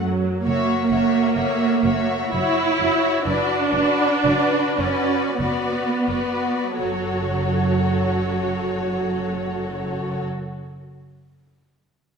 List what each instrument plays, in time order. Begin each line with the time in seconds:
Already playing: double bass section F#2
0.03 viola section F#3
0.46 double bass section F#1, cello section F#2, viola section A#3, violin section F#4 C#5 E5
0.90 double bass section F#1, cello section F#2, violin section F#4 C#5 E5
1.36 double bass section F#1, cello section F#2, violin section F#4 C#5 E5
1.83 double bass section F#1, cello section F#2, violin section F#4 C#5 E5
2.33 double bass section F#1, cello section F#2, viola section E4, violin section F#4 C#5 E5
2.79 double bass section F#1, cello section F#2, violin section F#4 C#5 E5
3.26 double bass section F#1, cello section F#2, viola section D4, violin section F#4 B4 D5
3.74 double bass section F#1, cello section F#2, violin section F#4 B4 D5
4.24 double bass section F#1, cello section F#2, violin section F#4 B4 D5
4.79 double bass section F#1, cello section F#2, viola section C#4, violin section F#4 B4 D5
5.40 double bass section F#1, cello section F#2, viola section B3, violin section F#4 B4 D5
6.08 double bass section F#1, cello section F#2, violin section F#4 B4 D5
6.78 double bass section F#1, cello section F#2, viola section F#3, violin section F#4 A4 C#5